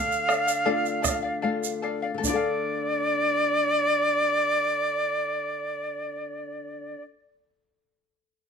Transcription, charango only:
0.00 0.27 A4 medium
0.00 0.28 D5 medium
0.00 0.29 F5 medium
0.28 0.47 A4 medium
0.28 0.47 D5 medium
0.28 0.46 F5 medium
0.47 0.64 D5 medium
0.47 0.65 F5 medium
0.65 1.01 A4 loud
0.65 1.02 D5 medium
0.65 1.02 F5 loud
1.02 1.22 A4 medium
1.02 1.23 D5 medium
1.02 1.21 F5 medium
1.22 1.41 D5 medium
1.22 1.42 F5 medium
1.42 1.81 A4 medium
1.42 1.82 D5 medium
1.42 1.82 F5 medium
1.82 2.03 A4 medium
1.82 2.02 D5 medium
1.82 2.01 F5 medium
2.02 2.24 D5 soft
2.02 2.24 F5 medium
2.18 7.02 A4 medium
2.27 7.11 D5 medium
2.35 7.20 F5 medium

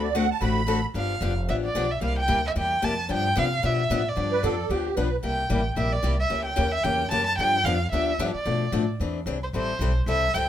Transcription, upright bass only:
0.00 0.30 D2 medium
0.41 0.84 A1 medium
0.94 1.20 G1 medium
1.21 1.47 F1 medium
1.49 1.74 A1 medium
1.75 2.00 B1 medium
2.01 2.28 C2 medium
2.29 2.55 D2 medium
2.56 2.82 E2 medium
2.83 3.09 F2 medium
3.09 3.35 G2 medium
3.37 3.62 C3 loud
3.63 3.89 B2 medium
3.90 4.16 A2 medium
4.17 4.42 G2 medium
4.43 4.69 F2 loud
4.69 4.96 D2 medium
4.97 5.23 B1 medium
5.23 5.49 C2 medium
5.50 5.76 A1 medium
5.76 6.02 A#1 medium
6.03 6.29 C2 medium
6.30 6.56 C#2 medium
6.57 6.83 D#2 medium
6.84 7.10 E2 medium
7.11 7.37 F#2 medium
7.38 7.63 G2 medium
7.64 7.90 F2 loud
7.92 8.18 D2 medium
8.19 8.33 G2 medium
8.34 muted upright bass stroke soft
8.46 8.72 B2 medium
8.72 8.98 A2 medium
9.00 9.25 E2 medium
9.26 9.52 C2 medium
9.53 9.78 A1 medium
9.79 10.05 B1 medium
10.06 10.33 C2 medium
10.34 10.49 C#2 medium

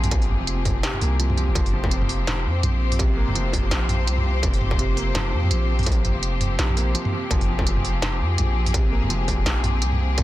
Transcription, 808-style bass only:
0.00 0.39 A#1 medium
0.40 0.83 F1 medium
1.02 1.47 C2 loud
1.48 1.55 G#1 loud
1.55 2.47 F1 loud
2.45 2.62 F2 loud
2.63 3.26 A#1 loud
3.28 3.70 F1 medium
3.71 4.08 A#1 medium
4.07 4.42 C2 medium
4.43 5.34 F1 loud
5.33 5.50 F2 medium
5.51 6.14 A#1 medium
6.15 6.58 F1 medium
6.59 6.95 A#1 medium
7.31 8.22 F1 medium
8.21 8.37 F2 loud
8.38 9.01 A#1 loud
9.03 9.45 F1 medium
9.46 9.84 A#1 medium
9.82 10.17 C2 medium
10.18 10.23 F1 loud

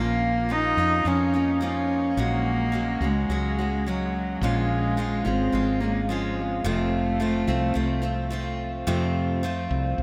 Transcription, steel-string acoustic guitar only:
0.00 0.50 A#2 medium
0.00 0.48 F3 medium
0.00 0.50 A#3 medium
0.00 0.50 C#4 medium
0.00 0.50 F4 medium
0.49 0.77 F3 medium
0.49 0.78 A#3 medium
0.49 0.78 C#4 medium
0.49 0.77 F4 medium
0.78 1.05 A#3 soft
0.78 1.06 C#4 soft
0.78 1.06 F4 medium
1.05 1.33 F3 medium
1.05 1.34 A#3 medium
1.05 1.34 C#4 medium
1.05 1.32 F4 medium
1.34 1.61 A#3 soft
1.34 1.62 C#4 soft
1.34 1.62 F4 soft
1.61 2.17 F3 medium
1.61 2.18 A#3 medium
1.61 2.18 C#4 medium
1.61 2.19 F4 medium
2.17 2.74 A#2 medium
2.17 2.71 F#3 medium
2.17 2.73 G#3 medium
2.17 2.74 C#4 medium
2.17 2.74 F#4 medium
2.72 3.01 F#3 medium
2.72 3.01 G#3 medium
2.72 3.01 C#4 medium
2.72 3.00 F#4 medium
3.02 3.29 G#3 soft
3.02 3.30 C#4 soft
3.02 3.30 F#4 medium
3.30 3.58 F#3 medium
3.30 3.58 G#3 medium
3.30 3.58 C#4 medium
3.30 3.57 F#4 medium
3.59 3.86 G#3 soft
3.59 3.87 C#4 soft
3.59 3.86 F#4 soft
3.87 4.42 F#3 medium
3.87 4.42 G#3 medium
3.87 4.43 C#4 medium
3.87 4.43 F#4 medium
4.43 4.98 A#2 medium
4.43 4.97 F3 medium
4.43 4.97 G#3 medium
4.43 4.98 C#4 medium
4.43 4.99 F4 medium
4.97 5.25 F3 medium
4.97 5.26 G#3 medium
4.97 5.24 C#4 medium
4.97 5.24 F4 medium
5.25 5.52 G#3 soft
5.25 5.53 C#4 medium
5.25 5.53 F4 medium
5.52 5.81 F3 medium
5.52 5.81 G#3 medium
5.52 5.81 C#4 medium
5.52 5.79 F4 medium
5.80 6.09 G#3 soft
5.80 6.09 C#4 soft
5.80 6.09 F4 soft
6.09 6.65 F3 medium
6.09 6.65 G#3 medium
6.09 6.65 C#4 medium
6.09 6.66 F4 medium
6.64 7.20 F2 medium
6.64 7.20 C3 medium
6.64 7.19 F3 medium
6.64 7.19 A3 medium
6.64 7.20 C4 medium
6.64 7.21 F4 medium
7.20 7.48 F3 medium
7.20 7.47 A3 medium
7.20 7.47 C4 medium
7.20 7.46 F4 medium
7.47 7.73 F3 medium
7.47 7.74 A3 medium
7.47 7.74 C4 medium
7.47 7.75 F4 medium
7.74 8.03 F3 medium
7.74 8.02 A3 medium
7.74 8.02 C4 medium
7.74 8.01 F4 medium
8.02 8.29 F3 soft
8.02 8.30 A3 medium
8.02 8.31 C4 medium
8.02 8.31 F4 medium
8.30 8.86 F3 medium
8.30 8.86 A3 medium
8.30 8.87 C4 medium
8.30 8.87 F4 medium
8.87 9.43 F2 medium
8.87 9.43 C3 medium
8.87 9.42 F3 medium
8.87 9.43 A3 medium
8.87 9.43 C4 medium
8.87 9.43 F4 medium
9.43 10.03 F3 medium
9.43 10.03 A3 medium
9.43 10.03 C4 medium
9.43 10.03 F4 medium

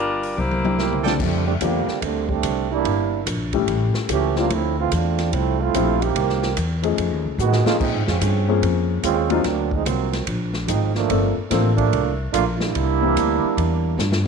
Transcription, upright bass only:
0.00 0.33 G1 medium
0.37 1.16 C2 medium
1.19 1.60 F2 medium
1.61 1.86 E2 medium
1.87 muted upright bass stroke soft
2.02 2.42 D2 medium
2.43 2.83 C2 medium
2.84 3.25 G1 medium
3.26 3.66 A#1 medium
3.67 3.93 A1 medium
4.09 4.49 C#2 medium
4.50 4.90 D2 medium
4.92 5.32 E2 medium
5.33 5.73 C2 medium
5.74 6.14 A#1 medium
6.15 6.55 C2 medium
6.57 6.97 E2 medium
6.98 7.11 F2 medium
7.11 7.24 D#2 medium
7.25 7.38 C#2 medium
7.38 7.64 A2 medium
7.66 muted upright bass stroke soft
7.80 7.94 A#2 medium
7.94 8.07 G#2 medium
8.07 8.20 F2 medium
8.21 8.61 G2 medium
8.62 9.02 F2 medium
9.04 9.44 D#2 medium
9.45 9.85 D2 medium
9.85 10.26 C2 medium
10.27 10.67 A#1 medium
10.68 11.08 G#1 medium
11.10 11.35 G1 medium
11.37 muted upright bass stroke soft
11.51 11.91 A1 loud
11.92 12.32 C2 medium
12.33 12.73 A#1 medium
12.75 13.15 C2 medium
13.16 13.41 D2 medium
13.44 muted upright bass stroke soft
13.57 13.97 E2 medium
13.98 14.27 G2 medium

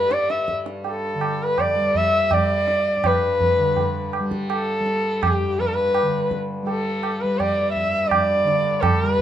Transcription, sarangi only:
0.00 0.14 B4 medium
0.12 0.32 D5 medium
0.30 0.48 E5 medium
0.89 1.44 A4 medium
1.43 1.61 B4 medium
1.60 1.98 D5 medium
1.97 2.35 E5 medium
2.33 3.08 D5 medium
3.07 4.15 B4 medium
4.52 5.24 A4 medium
5.23 5.61 G4 medium
5.60 5.68 B4 medium
5.66 5.76 A4 medium
5.74 6.32 B4 medium
6.68 7.22 A4 medium
7.21 7.40 B4 medium
7.38 7.73 D5 medium
7.73 8.10 E5 medium
8.08 8.83 D5 medium
8.81 8.99 A4 medium
8.99 9.13 A#4 medium
9.13 9.22 B4 medium

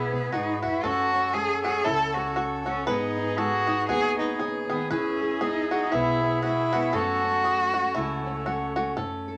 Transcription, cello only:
0.00 0.34 B3 loud
0.32 0.63 D#4 medium
0.63 0.86 E4 medium
0.84 1.35 F#4 loud
1.34 1.63 G#4 loud
1.63 1.86 G#4 loud
1.84 2.16 A4 loud
2.14 2.36 F#4 medium
2.69 2.87 C#4 medium
2.88 3.40 D#4 medium
3.38 3.88 F#4 loud
3.89 4.17 G#4 loud
4.19 4.38 D#4 medium
4.70 4.89 B3 medium
4.92 5.45 C#4 medium
5.43 5.71 D#4 medium
5.72 5.94 D#4 medium
5.93 6.43 E4 loud
6.45 6.96 E4 loud
6.95 8.47 F#4 loud

